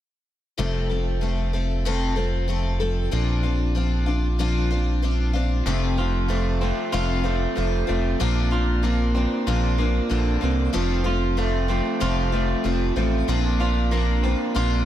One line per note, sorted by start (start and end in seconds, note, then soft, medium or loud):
0.58 3.09 F1 medium
0.58 0.90 F2 medium
0.58 0.90 C3 medium
0.58 0.90 F3 medium
0.58 0.91 A3 medium
0.58 0.90 C4 medium
0.58 0.88 A4 medium
0.89 1.20 F3 soft
0.89 1.21 A3 soft
0.89 1.21 C4 soft
0.89 1.22 A4 soft
1.21 1.53 F3 soft
1.21 1.54 A3 soft
1.21 1.53 C4 soft
1.21 1.52 A4 soft
1.53 1.85 F3 soft
1.53 1.85 A3 soft
1.53 1.85 C4 soft
1.53 1.85 A4 soft
1.85 2.17 F2 medium
1.85 2.17 C3 medium
1.85 2.17 F3 medium
1.85 2.16 A3 medium
1.85 2.16 C4 medium
1.85 2.15 A4 medium
2.16 2.46 F3 soft
2.16 2.47 A3 soft
2.16 2.48 C4 soft
2.16 2.49 A4 soft
2.48 2.80 F3 medium
2.48 2.81 A3 medium
2.48 2.80 C4 medium
2.48 2.79 A4 medium
2.80 3.11 F3 soft
2.80 3.12 A3 soft
2.80 3.11 C4 soft
2.80 3.12 A4 medium
3.11 5.62 A#1 medium
3.11 3.44 A#2 medium
3.11 3.44 F3 medium
3.11 3.44 C4 medium
3.11 3.43 D4 medium
3.11 3.42 F4 medium
3.43 3.75 C4 soft
3.43 3.75 D4 soft
3.43 3.75 F4 soft
3.75 4.07 F3 soft
3.75 4.07 C4 medium
3.75 4.06 D4 medium
3.75 4.05 F4 medium
4.06 4.39 C4 soft
4.06 4.39 D4 soft
4.06 4.39 F4 soft
4.39 4.71 A#2 medium
4.39 4.71 F3 medium
4.39 4.71 C4 medium
4.39 4.70 D4 medium
4.39 4.69 F4 medium
4.71 5.02 C4 soft
4.71 5.03 D4 soft
4.71 5.03 F4 medium
5.02 5.34 F3 medium
5.02 5.35 C4 medium
5.02 5.33 D4 medium
5.02 5.32 F4 medium
5.33 5.66 C4 soft
5.33 5.66 D4 soft
5.33 5.66 F4 medium
5.66 6.72 F1 medium
5.66 5.98 F2 medium
5.66 5.98 C3 medium
5.66 5.98 F3 medium
5.66 5.98 A3 medium
5.66 5.97 C4 medium
5.66 5.96 F4 medium
5.97 6.27 F3 soft
5.97 6.28 A3 soft
5.97 6.29 C4 soft
5.97 6.29 F4 soft
6.28 6.61 F3 medium
6.28 6.61 A3 medium
6.28 6.61 C4 medium
6.28 6.60 F4 medium
6.61 6.92 F3 soft
6.61 6.92 A3 soft
6.61 6.92 C4 soft
6.61 6.93 F4 soft
6.92 7.47 F1 loud
6.92 7.24 F2 medium
6.92 7.25 C3 medium
6.92 7.24 F3 medium
6.92 7.23 A3 medium
6.92 7.23 C4 medium
6.92 7.22 F4 medium
7.23 7.54 F3 soft
7.23 7.55 A3 soft
7.23 7.56 C4 soft
7.23 7.56 F4 soft
7.55 7.84 F1 medium
7.55 7.88 F3 soft
7.55 7.88 A3 medium
7.55 7.87 C4 medium
7.55 7.86 F4 medium
7.87 8.15 F1 medium
7.87 8.19 F3 soft
7.87 8.20 A3 soft
7.87 8.19 C4 soft
7.87 8.19 F4 medium
8.20 9.27 A#1 medium
8.20 8.52 A#2 medium
8.20 8.52 F3 medium
8.20 8.52 C4 medium
8.20 8.51 D4 medium
8.20 8.50 F4 medium
8.51 8.82 C4 soft
8.51 8.83 D4 soft
8.51 8.83 F4 soft
8.83 9.15 F3 medium
8.83 9.77 A#3 medium
8.83 9.15 C4 medium
8.83 9.14 D4 medium
8.83 9.13 F4 medium
9.15 9.46 C4 soft
9.15 9.47 D4 soft
9.15 9.47 F4 soft
9.47 10.01 A#1 loud
9.47 9.79 A#2 medium
9.47 9.79 F3 medium
9.47 9.79 C4 medium
9.47 9.78 D4 medium
9.47 9.77 F4 medium
9.78 10.41 A#3 medium
9.78 10.09 C4 soft
9.78 10.10 D4 soft
9.78 10.10 F4 medium
10.09 10.37 A#1 medium
10.09 10.74 D3 medium
10.09 10.42 F3 medium
10.09 10.42 C4 medium
10.09 10.41 D4 medium
10.09 10.40 F4 medium
10.41 10.69 C2 medium
10.41 10.74 A#3 medium
10.41 10.73 C4 soft
10.41 10.74 D4 soft
10.41 10.73 F4 medium
10.73 11.81 F1 medium
10.73 11.05 F2 medium
10.73 11.05 C3 medium
10.73 11.05 F3 medium
10.73 11.04 A3 medium
10.73 11.03 C4 medium
10.73 11.03 F4 medium
11.04 11.36 F3 soft
11.04 11.36 A3 soft
11.04 11.37 C4 soft
11.04 11.37 F4 medium
11.37 11.69 F3 medium
11.37 11.69 A3 medium
11.37 11.68 C4 medium
11.37 11.67 F4 medium
11.68 12.00 F3 soft
11.68 12.00 A3 soft
11.68 12.00 C4 soft
11.68 12.01 F4 soft
12.00 12.55 F1 loud
12.00 12.33 F2 medium
12.00 12.33 C3 medium
12.00 12.33 F3 medium
12.00 12.32 A3 medium
12.00 12.32 C4 medium
12.00 12.31 F4 medium
12.32 12.63 F3 soft
12.32 12.64 A3 soft
12.32 12.64 C4 soft
12.32 12.64 F4 medium
12.64 12.92 F1 medium
12.64 12.96 F3 medium
12.64 12.96 A3 medium
12.64 12.95 C4 medium
12.64 12.95 F4 medium
12.96 13.23 A1 medium
12.96 13.27 F3 soft
12.96 13.28 A3 soft
12.96 13.27 C4 medium
12.96 13.28 F4 medium
13.28 14.35 A#1 medium
13.28 13.60 A#2 medium
13.28 13.60 F3 medium
13.28 13.60 C4 medium
13.28 13.60 D4 medium
13.28 13.59 F4 medium
13.60 13.91 C4 soft
13.60 13.92 D4 soft
13.60 13.92 F4 medium
13.91 14.24 F3 medium
13.91 14.85 A#3 medium
13.91 14.24 C4 medium
13.91 14.23 D4 medium
13.91 14.22 F4 medium
14.24 14.55 C4 soft
14.24 14.55 D4 soft
14.24 14.55 F4 medium
14.55 14.85 A#1 loud
14.55 14.85 A#2 medium
14.55 14.85 F3 medium
14.55 14.85 C4 medium
14.55 14.85 D4 medium
14.55 14.85 F4 medium